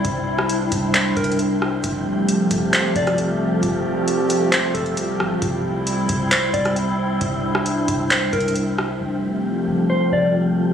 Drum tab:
HH |x-----------x-----x-----x-----x-x-x-x-----------|x-----------x-----x-----x-----x--x--x-----------|x-----------x-----x-----x-----x--x--x-----------|x-----------x-----x-----x-----x--x--x-----------|
CP |------------------------x-----------------------|------------------------x-----------------------|------------------------x-----------------------|------------------------x-----------------------|
SD |---------r--------------------------------r-----|---------------------------------r--------------|------------------------------------------r-----|---------------------------------r--------------|
BD |o-----------------o-----------o-----------------|o-----------------o-----------o-----------------|o-----------------------------o-----------------|o-----------------o-----------o-----------------|

HH |x-----------x-----x-----x-----x-x-x-x-----------|------------------------------------------------|
CP |------------------------x-----------------------|------------------------------------------------|
SD |---------r--------------------------------r-----|------------------------------------------------|
BD |o-----------------o-----------o-----------------|------------------------------------------------|